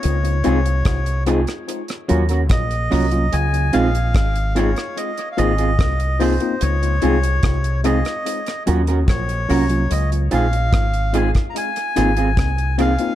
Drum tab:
HH |xxxxxxxxxxxxxxox|xxxxxxxxxxxxxxox|xxxxxxxxxxxxxxox|xxxxxxxxxxxxxxxx|
SD |----r--r-r--r---|----r--r----r---|----r--r-r--r---|----r--r--r-r---|
BD |----o-------o---|----o-------o---|----o-------o---|----o--o----o---|